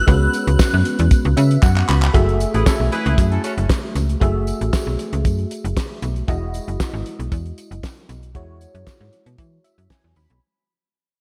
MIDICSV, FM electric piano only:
0, 0, Header, 1, 2, 480
1, 0, Start_track
1, 0, Tempo, 517241
1, 71, Time_signature, 4, 2, 24, 8
1, 10398, End_track
2, 0, Start_track
2, 0, Title_t, "FM electric piano"
2, 0, Program_c, 0, 5
2, 63, Note_on_c, 0, 56, 68
2, 67, Note_on_c, 0, 59, 61
2, 70, Note_on_c, 0, 61, 61
2, 74, Note_on_c, 0, 66, 59
2, 79, Note_on_c, 0, 71, 81
2, 1269, Note_on_c, 0, 76, 72
2, 1493, Note_off_c, 0, 76, 0
2, 1510, Note_on_c, 0, 78, 78
2, 1733, Note_off_c, 0, 78, 0
2, 1750, Note_on_c, 0, 83, 76
2, 1949, Note_off_c, 0, 56, 0
2, 1952, Note_off_c, 0, 59, 0
2, 1953, Note_off_c, 0, 61, 0
2, 1955, Note_off_c, 0, 66, 0
2, 1957, Note_off_c, 0, 71, 0
2, 1973, Note_off_c, 0, 83, 0
2, 1982, Note_on_c, 0, 57, 88
2, 1987, Note_on_c, 0, 66, 74
2, 1992, Note_on_c, 0, 68, 76
2, 1997, Note_on_c, 0, 76, 96
2, 3869, Note_off_c, 0, 57, 0
2, 3871, Note_off_c, 0, 66, 0
2, 3874, Note_off_c, 0, 68, 0
2, 3877, Note_off_c, 0, 76, 0
2, 3900, Note_on_c, 0, 57, 87
2, 3907, Note_on_c, 0, 66, 72
2, 3913, Note_on_c, 0, 68, 75
2, 3917, Note_on_c, 0, 76, 88
2, 5788, Note_off_c, 0, 57, 0
2, 5792, Note_off_c, 0, 66, 0
2, 5795, Note_off_c, 0, 68, 0
2, 5797, Note_off_c, 0, 76, 0
2, 5825, Note_on_c, 0, 56, 83
2, 5830, Note_on_c, 0, 64, 78
2, 5835, Note_on_c, 0, 66, 73
2, 5839, Note_on_c, 0, 75, 89
2, 7711, Note_off_c, 0, 56, 0
2, 7713, Note_off_c, 0, 64, 0
2, 7715, Note_off_c, 0, 66, 0
2, 7718, Note_off_c, 0, 75, 0
2, 7745, Note_on_c, 0, 56, 80
2, 7750, Note_on_c, 0, 64, 74
2, 7753, Note_on_c, 0, 66, 72
2, 7759, Note_on_c, 0, 73, 98
2, 8949, Note_on_c, 0, 76, 72
2, 9173, Note_off_c, 0, 76, 0
2, 9189, Note_on_c, 0, 80, 73
2, 9413, Note_off_c, 0, 80, 0
2, 9435, Note_on_c, 0, 83, 65
2, 9631, Note_off_c, 0, 56, 0
2, 9633, Note_off_c, 0, 64, 0
2, 9635, Note_off_c, 0, 66, 0
2, 9638, Note_off_c, 0, 73, 0
2, 9656, Note_off_c, 0, 83, 0
2, 10398, End_track
0, 0, End_of_file